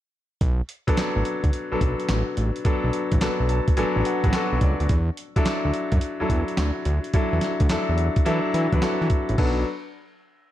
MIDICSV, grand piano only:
0, 0, Header, 1, 2, 480
1, 0, Start_track
1, 0, Key_signature, 2, "minor"
1, 0, Tempo, 560748
1, 354, Time_signature, 4, 2, 24, 8
1, 9002, End_track
2, 0, Start_track
2, 0, Title_t, "Grand piano"
2, 0, Program_c, 0, 0
2, 510, Control_c, 0, 64, 127
2, 747, Note_on_c, 0, 54, 93
2, 751, Note_on_c, 0, 59, 86
2, 754, Note_on_c, 0, 62, 86
2, 760, Note_on_c, 0, 69, 100
2, 1185, Note_off_c, 0, 54, 0
2, 1188, Note_off_c, 0, 59, 0
2, 1189, Note_off_c, 0, 62, 0
2, 1192, Note_off_c, 0, 69, 0
2, 1468, Note_on_c, 0, 54, 84
2, 1470, Note_on_c, 0, 59, 72
2, 1475, Note_on_c, 0, 62, 69
2, 1477, Note_on_c, 0, 69, 89
2, 1978, Note_off_c, 0, 54, 0
2, 1979, Note_off_c, 0, 59, 0
2, 1981, Note_off_c, 0, 62, 0
2, 1982, Note_off_c, 0, 69, 0
2, 2265, Note_on_c, 0, 54, 87
2, 2267, Note_on_c, 0, 59, 83
2, 2273, Note_on_c, 0, 62, 88
2, 2275, Note_on_c, 0, 69, 93
2, 2586, Note_off_c, 0, 54, 0
2, 2587, Note_off_c, 0, 59, 0
2, 2590, Note_off_c, 0, 62, 0
2, 2591, Note_off_c, 0, 69, 0
2, 2744, Note_on_c, 0, 54, 75
2, 2749, Note_on_c, 0, 59, 74
2, 2752, Note_on_c, 0, 62, 68
2, 2756, Note_on_c, 0, 69, 88
2, 2990, Note_on_c, 0, 81, 65
2, 3065, Note_off_c, 0, 54, 0
2, 3068, Note_off_c, 0, 59, 0
2, 3070, Note_off_c, 0, 62, 0
2, 3071, Note_off_c, 0, 69, 0
2, 3214, Note_off_c, 0, 81, 0
2, 3225, Note_on_c, 0, 54, 100
2, 3229, Note_on_c, 0, 59, 91
2, 3231, Note_on_c, 0, 80, 78
2, 3234, Note_on_c, 0, 62, 94
2, 3235, Note_on_c, 0, 69, 103
2, 3455, Note_off_c, 0, 80, 0
2, 3458, Note_off_c, 0, 54, 0
2, 3460, Note_off_c, 0, 59, 0
2, 3463, Note_off_c, 0, 62, 0
2, 3463, Note_off_c, 0, 69, 0
2, 3475, Note_on_c, 0, 78, 67
2, 3626, Note_on_c, 0, 54, 84
2, 3632, Note_on_c, 0, 59, 69
2, 3634, Note_on_c, 0, 62, 71
2, 3641, Note_on_c, 0, 66, 95
2, 3679, Note_off_c, 0, 54, 0
2, 3682, Note_off_c, 0, 59, 0
2, 3683, Note_off_c, 0, 62, 0
2, 3687, Note_off_c, 0, 66, 0
2, 3697, Note_off_c, 0, 78, 0
2, 3715, Note_on_c, 0, 54, 82
2, 3717, Note_on_c, 0, 59, 81
2, 3718, Note_on_c, 0, 78, 70
2, 3719, Note_on_c, 0, 62, 72
2, 3723, Note_on_c, 0, 69, 89
2, 3939, Note_off_c, 0, 78, 0
2, 3955, Note_on_c, 0, 74, 70
2, 4177, Note_off_c, 0, 74, 0
2, 4194, Note_off_c, 0, 54, 0
2, 4195, Note_off_c, 0, 59, 0
2, 4196, Note_off_c, 0, 62, 0
2, 4198, Note_off_c, 0, 69, 0
2, 4206, Control_c, 0, 64, 0
2, 4335, Control_c, 0, 64, 127
2, 4588, Note_on_c, 0, 54, 88
2, 4591, Note_on_c, 0, 62, 89
2, 4593, Note_on_c, 0, 64, 81
2, 4599, Note_on_c, 0, 69, 101
2, 5026, Note_off_c, 0, 54, 0
2, 5028, Note_off_c, 0, 62, 0
2, 5029, Note_off_c, 0, 64, 0
2, 5032, Note_off_c, 0, 69, 0
2, 5307, Note_on_c, 0, 54, 83
2, 5311, Note_on_c, 0, 62, 68
2, 5313, Note_on_c, 0, 64, 75
2, 5318, Note_on_c, 0, 69, 92
2, 5817, Note_off_c, 0, 54, 0
2, 5820, Note_off_c, 0, 62, 0
2, 5821, Note_off_c, 0, 64, 0
2, 5823, Note_off_c, 0, 69, 0
2, 6111, Note_on_c, 0, 54, 89
2, 6114, Note_on_c, 0, 62, 80
2, 6114, Note_on_c, 0, 64, 85
2, 6122, Note_on_c, 0, 69, 96
2, 6429, Note_off_c, 0, 54, 0
2, 6430, Note_off_c, 0, 62, 0
2, 6431, Note_off_c, 0, 64, 0
2, 6434, Note_off_c, 0, 69, 0
2, 6589, Note_on_c, 0, 54, 82
2, 6593, Note_on_c, 0, 62, 78
2, 6598, Note_on_c, 0, 64, 71
2, 6601, Note_on_c, 0, 69, 91
2, 6908, Note_off_c, 0, 54, 0
2, 6910, Note_off_c, 0, 62, 0
2, 6912, Note_off_c, 0, 64, 0
2, 6914, Note_off_c, 0, 69, 0
2, 7064, Note_on_c, 0, 54, 104
2, 7069, Note_on_c, 0, 62, 93
2, 7071, Note_on_c, 0, 64, 93
2, 7074, Note_on_c, 0, 69, 104
2, 7297, Note_off_c, 0, 54, 0
2, 7300, Note_off_c, 0, 62, 0
2, 7301, Note_off_c, 0, 64, 0
2, 7303, Note_off_c, 0, 69, 0
2, 7467, Note_on_c, 0, 54, 83
2, 7469, Note_on_c, 0, 62, 76
2, 7472, Note_on_c, 0, 64, 72
2, 7476, Note_on_c, 0, 71, 89
2, 7520, Note_off_c, 0, 54, 0
2, 7521, Note_off_c, 0, 62, 0
2, 7522, Note_off_c, 0, 64, 0
2, 7524, Note_off_c, 0, 71, 0
2, 7545, Note_on_c, 0, 54, 84
2, 7545, Note_on_c, 0, 62, 79
2, 7553, Note_on_c, 0, 64, 78
2, 7555, Note_on_c, 0, 69, 94
2, 8016, Note_off_c, 0, 62, 0
2, 8017, Note_off_c, 0, 69, 0
2, 8018, Note_off_c, 0, 54, 0
2, 8029, Note_on_c, 0, 62, 78
2, 8030, Note_on_c, 0, 59, 78
2, 8030, Note_on_c, 0, 69, 89
2, 8031, Note_on_c, 0, 54, 81
2, 8033, Note_off_c, 0, 64, 0
2, 8046, Control_c, 0, 64, 0
2, 8254, Note_off_c, 0, 62, 0
2, 8255, Note_off_c, 0, 54, 0
2, 8255, Note_off_c, 0, 59, 0
2, 8255, Note_off_c, 0, 69, 0
2, 9002, End_track
0, 0, End_of_file